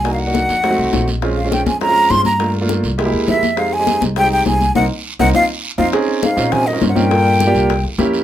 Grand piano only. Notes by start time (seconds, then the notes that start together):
0.04 A#3 D4 D#4 F#4
0.27 A#3 D4 D#4 F#4
0.63 A3 C4 D#4 F#4
0.70 A3 C4 D#4 F#4
1.22 G#3 C4 C#4 F4
1.44 G#3 C4 C#4 F4
1.81 G#3 C4 C#4 F4
1.88 G#3 C4 C#4 F4
2.39 A3 A#3 D4 F4
2.61 A3 A#3 D4 F4
2.98 G#3 A#3 E4 G4
3.05 G#3 A#3 E4 G4
3.57 G#3 C4 D#4 G4
3.79 G#3 C4 D#4 G4
4.16 G#3 C4 D#4 G4
4.23 G#3 C4 D#4 G4
4.75 A#3 C4 D#4
5.19 A#3 C4 D#4
5.35 C4 D#4 F4
5.78 C4 D#4 F4
5.93 C4 C#4 D#4 G#4
6.37 C4 C#4 D#4 F4
6.73 C4 C#4 D#4 F4
6.95 C4 C#4 D#4 F4
7.11 A#3 D4 F4 A4
7.47 A#3 D4 F4 G4
7.98 A#3 C#4 E4 G4